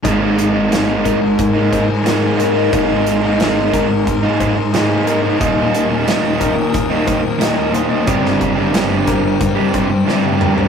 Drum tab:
HH |x-x-x-x-x-x-x-x-|x-x-x-x-x-x-x-x-|x-x-x-x-x-x-x-x-|x-x-x-x-x-x-----|
SD |----o-------o---|----o-------o---|----o-------o---|-o--o-------o---|
T1 |----------------|----------------|----------------|-------------o--|
T2 |----------------|----------------|----------------|--------------o-|
FT |----------------|----------------|----------------|---------------o|
BD |o-----o-o-o-----|o-----o-o-o-----|o-----o-o-o-----|o-o---o-o-o-----|